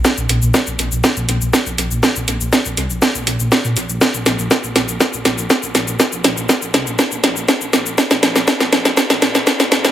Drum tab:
HH |--x---x---x---x-|--x---x---x---x-|--x---x---x---x-|--x---x---x---x-|
SH |xxxxxxxxxxxxxxxx|xxxxxxxxxxxxxxxx|xxxxxxxxxxxxxxxx|xxxxxxxxxxxxxxxx|
SD |o---o---o---o---|o---o---o---o---|o-o-o-o-o-o-o-o-|o-o-o-o-o-o-o-o-|
BD |o---o---o---o---|o---o---o---o---|o---o---o---o---|o---o---o---o---|

HH |--x---x---x---x-|
SH |xxxxxxxxxxxxxxxx|
SD |oooooooooooooooo|
BD |o---o---o---o---|